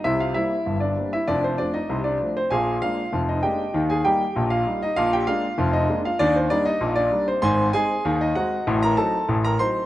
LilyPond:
<<
  \new Staff \with { instrumentName = "Grand piano" } { \time 2/4 \key ees \major \tempo 4 = 97 <e' e''>16 <f' f''>16 <e' e''>8. <d' d''>8 <e' e''>16 | <d' d''>16 <c' c''>16 <d' d''>16 <ees' ees''>8 <d' d''>8 <c' c''>16 | <aes' f'' aes''>8 <f' f''>8. <ees' ees''>16 <g' ees'' g''>8~ | <g' ees'' g''>16 <aes' aes''>16 <g' g''>8. <f' f''>8 <ees' ees''>16 |
<f' f''>16 <g' g''>16 <f' f''>8. <ees' ees''>8 <f' f''>16 | <d' d''>16 <c' c''>16 <d' d''>16 <ees' ees''>8 <d' d''>8 <c' c''>16 | <c'' aes'' c'''>8 <aes' aes''>8. <ees' ees''>16 <ges' ees'' ges''>8~ | <ges' ees'' ges''>16 <bes' bes''>16 <a' a''>8. <bes' bes''>16 <c'' c'''>8 | }
  \new Staff \with { instrumentName = "Grand piano" } { \clef bass \time 2/4 \key ees \major <c, c>8 <g bes c'>8 <g,, g,>8 <g bes c'>8 | <f,, f,>8 <f a c'>8 <c, c>8 <f a c'>8 | <bes,, bes,>8 <aes bes d'>8 <f,, f,>8 <aes bes d'>8 | <ees, ees>8 <g bes ees'>8 <bes,, bes,>8 <g bes ees'>8 |
<bes,, bes,>8 <aes bes d'>8 <f,, f,>8 <aes bes d'>8 | <ees, ees>8 <g bes ees'>8 <bes,, bes,>8 <g bes ees'>8 | <aes,, aes,>8 <aes c' ees'>8 <ees, ees>8 <aes c' ees'>8 | <a,, a,>8 <fis c' ees'>8 <a,, a,>8 <fis c' ees'>8 | }
>>